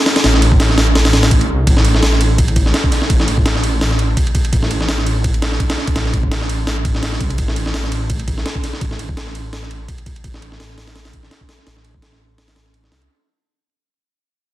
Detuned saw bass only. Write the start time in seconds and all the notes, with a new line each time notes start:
0.24 A1
1.13 A1
1.49 C2
1.67 A1
3.10 A1
4.53 A1
5.96 A1
6.85 A1
7.21 C2
7.38 A1
8.81 A1
10.24 A1
11.67 A1
12.56 A1
12.92 C2